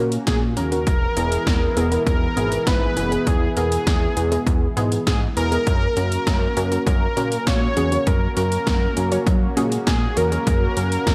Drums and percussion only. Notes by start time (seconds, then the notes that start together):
0.12 closed hi-hat
0.27 kick, snare, closed hi-hat
0.57 closed hi-hat
0.72 closed hi-hat
0.87 kick, closed hi-hat
1.17 closed hi-hat
1.32 closed hi-hat
1.47 kick, snare, closed hi-hat
1.77 closed hi-hat
1.92 closed hi-hat
2.07 kick, closed hi-hat
2.37 closed hi-hat
2.52 closed hi-hat
2.67 kick, snare, closed hi-hat
2.97 closed hi-hat
3.12 closed hi-hat
3.27 kick, closed hi-hat
3.57 closed hi-hat
3.72 closed hi-hat
3.87 kick, snare, closed hi-hat
4.17 closed hi-hat
4.32 closed hi-hat
4.47 kick, closed hi-hat
4.77 closed hi-hat
4.92 closed hi-hat
5.07 kick, snare, closed hi-hat
5.37 closed hi-hat
5.52 closed hi-hat
5.67 kick, closed hi-hat
5.97 closed hi-hat
6.12 closed hi-hat
6.27 kick, snare, closed hi-hat
6.57 closed hi-hat
6.72 closed hi-hat
6.87 kick, closed hi-hat
7.17 closed hi-hat
7.32 closed hi-hat
7.47 kick, snare, closed hi-hat
7.77 closed hi-hat
7.92 closed hi-hat
8.07 kick, closed hi-hat
8.37 closed hi-hat
8.52 closed hi-hat
8.67 kick, snare, closed hi-hat
8.97 closed hi-hat
9.12 closed hi-hat
9.27 kick, closed hi-hat
9.57 closed hi-hat
9.72 closed hi-hat
9.87 kick, snare, closed hi-hat
10.17 closed hi-hat
10.32 closed hi-hat
10.47 kick, closed hi-hat
10.77 closed hi-hat
10.92 closed hi-hat
11.07 kick, snare, closed hi-hat